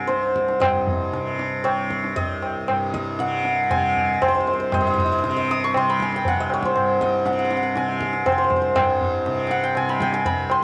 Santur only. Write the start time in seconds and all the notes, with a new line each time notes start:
Already playing: D#5 F#5 G#5 B5
0.07 C5
0.60 D#5
1.64 C#5
2.16 D#5
2.94 D#5
3.20 F#5
3.71 G#5
4.22 C5
4.28 C5
4.35 C5
4.40 C5
4.47 C5
4.53 C5
4.60 C5
4.74 D#5
4.81 D#5
4.87 D#5
4.94 D#5
5.00 D#5
5.06 D#5
5.12 D#5
5.18 D#5
5.24 D#5
5.31 D#5
5.36 D#5
5.51 D#6
5.64 C#6
5.77 C6
5.90 B5
6.02 G#5
6.16 G5
6.28 F#5
6.40 D#5
6.54 C#5
6.65 C5
7.02 D#5
7.26 F#5
7.33 F#5
7.39 F#5
7.45 F#5
7.50 F#5
7.57 F#5
7.63 F#5
7.77 G#5
8.26 C5
8.32 C5
8.38 C5
8.44 C5
8.50 C5
8.56 C5
8.62 C5
8.75 D#5
9.47 G5
9.51 F#5
9.64 G5
9.77 G#5
9.89 B5
10.02 G5
10.14 G#5
10.26 B5
10.51 C6